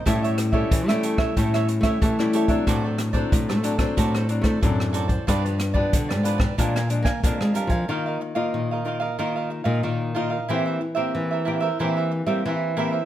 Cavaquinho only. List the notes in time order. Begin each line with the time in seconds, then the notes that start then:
0.06 G4 A4 C#5 E5
0.23 A4 C#5 E5
0.38 muted cavaquinho stroke
0.52 A4 C#5 E5
0.88 A4 C#5 E5
1.03 G4 A4 C#5 E5
1.18 A4 C#5 E5
1.37 G4 A4 C#5 E5
1.54 A4 C#5 E5
1.68 muted cavaquinho stroke
1.83 A4 C#5 E5
2.02 G4 A4 C#5 E5
2.33 G4 A4 C#5 E5
2.49 A4 C#5 E5
2.67 F#4 A4 C5 D5
2.84 A4 C5 D5
2.98 muted cavaquinho stroke
3.13 A4 C5 D5
3.49 A4 C5 D5
3.63 F#4 A4 C5 D5
3.78 A4 C5 D5
3.97 F#4 A4 C5 D5
4.14 A4 C5 D5
4.29 muted cavaquinho stroke
4.43 A4 C5 D5
4.61 F#4 A4 C5 D5
4.93 F#4 A4 C5 D5
5.08 A4 C5 D5
5.27 F4 G4 B4 D5
5.45 G4 B4 D5
5.59 muted cavaquinho stroke
5.74 G4 B4 D5
6.09 G4 B4 D5
6.23 F4 G4 B4 D5
6.38 G4 B4 D5
6.58 D4 A#4 F5 G#5
6.76 A#4 F5 G#5
6.89 muted cavaquinho stroke
7.05 A#4 F5 G#5
7.23 D4 A#4 F5 G#5
7.54 D4 A#4 F5 G#5
7.70 A#4 F5 G#5
7.89 F4 A#4 D#5 F5
8.06 A#4 D#5 F5
8.21 muted cavaquinho stroke
8.35 A#4 D#5 F5
8.71 A#4 D#5 F5
8.86 F4 A#4 D#5 F5
9.00 A#4 D#5 F5
9.19 F4 A#4 D#5 F5
9.36 A#4 D#5 F5
9.50 muted cavaquinho stroke
9.64 A#4 D#5 F5
9.83 F4 A#4 D#5 F5
10.15 F4 A#4 D#5 F5
10.30 A#4 D#5 F5
10.48 E4 A#4 C5 E5
10.66 A#4 C5 E5
10.81 muted cavaquinho stroke
10.95 A#4 C5 E5
11.31 A#4 C5 E5
11.45 E4 A#4 C5 E5
11.60 A#4 C5 E5
11.79 E4 A#4 C5 E5
11.97 A#4 C5 E5
12.11 muted cavaquinho stroke
12.26 A#4 C5 E5
12.46 E4 A#4 C5 E5
12.77 E4 A#4 C5 E5
12.91 A#4 C5 E5